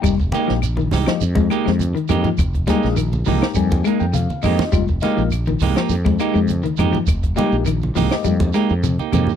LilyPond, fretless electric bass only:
\new Staff \with { instrumentName = "Fretless electric bass" } { \clef bass \time 4/4 \key f \minor \tempo 4 = 102 f,,8 r16 bes,,8. c,16 r16 f,8 r16 f,8 r16 f,16 r16 | f,,8 r16 bes,,8. c,16 r16 f,8 r16 f,8 r16 f,16 r16 | f,,8 r16 bes,,8. c,16 r16 f,8 r16 f,8 r16 f,16 r16 | f,,8 r16 bes,,8. c,16 r16 f,8 r16 f,8 r16 f,16 r16 | }